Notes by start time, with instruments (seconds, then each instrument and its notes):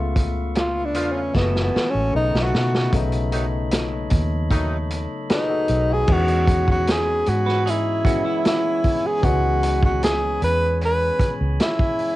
Already playing: fingered electric bass C#2, tine electric piano C#3 A3 B3 F4, tonewheel organ B4 E5 F5 C#6
0.16 kick, closed hi-hat
0.55 tenor saxophone F4, snare, closed hi-hat
0.85 tenor saxophone D4
0.94 fingered electric bass E2, horn section F3 A3 B3 F4, closed hi-hat
1.12 tenor saxophone C#4
1.33 fingered electric bass F#1, tine electric piano E3 G#3 A3 F#4, tenor saxophone B3, tonewheel organ F#5 G#5 A5 E6, kick, snare
1.56 snare
1.63 tenor saxophone B3
1.76 muted fingered electric bass stroke, snare
1.90 tenor saxophone C#4
1.95 fingered electric bass A1
2.13 fingered electric bass B1, tine electric piano C#3 A3 B3 D#4, tenor saxophone D#4, tonewheel organ B4 D#5 A5 C#6
2.34 fingered electric bass B1, snare
2.43 tenor saxophone F#4
2.54 fingered electric bass B2, snare
2.74 snare
2.91 fingered electric bass B1, tine electric piano C#3 F#3 A3, tonewheel organ A4 C#5 D#5 B5, kick, closed hi-hat
2.95 tine electric piano B3 D#4
3.12 closed hi-hat
3.32 horn section D#3 F#3 A3 D#4, closed hi-hat
3.71 snare, closed hi-hat
4.10 fingered electric bass D#2, kick, closed hi-hat
4.51 horn section D#3 F#3 A3 D#4, kick, closed hi-hat
4.90 closed hi-hat
5.30 tenor saxophone D#4, tine electric piano G#4 B4, snare, closed hi-hat
5.49 tine electric piano F#4 A4
5.68 fingered electric bass B1, closed hi-hat
5.90 tine electric piano D#4 F#4, tenor saxophone G#4
6.06 fingered electric bass E2, tine electric piano E3 G#3 B3, tonewheel organ G#4 C#5 G#5 B5, kick, crash
6.10 tine electric piano C#4 G#4, tenor saxophone F#4
6.28 closed hi-hat
6.48 kick, closed hi-hat
6.68 tenor saxophone F#4, kick
6.87 tenor saxophone G#4, snare, closed hi-hat
7.26 fingered electric bass G#2, tenor saxophone F#4, closed hi-hat
7.46 clean electric guitar F#4 B4, snare
7.66 clean electric guitar D#4 G#4, tenor saxophone E4, closed hi-hat
8.04 tine electric piano E3 G#3 B3 C#4 G#4, clean electric guitar C#4 F#4, kick, closed hi-hat
8.25 clean electric guitar B3 E4
8.45 tenor saxophone E4, snare, closed hi-hat
8.84 kick, open hi-hat
9.06 tenor saxophone G#4
9.21 fingered electric bass C#2, tine electric piano E3 G#3 B3, tenor saxophone F#4, kick, closed hi-hat
9.25 tine electric piano C#4 G#4
9.63 closed hi-hat
9.83 tenor saxophone F#4, kick
10.03 tenor saxophone G#4, snare, closed hi-hat
10.42 fingered electric bass E2, tenor saxophone B4, closed hi-hat
10.81 tenor saxophone B4, closed hi-hat
11.20 muted fingered electric bass stroke, kick, closed hi-hat
11.41 fingered electric bass C#2
11.60 tenor saxophone E4, snare, closed hi-hat
11.79 kick
11.99 open hi-hat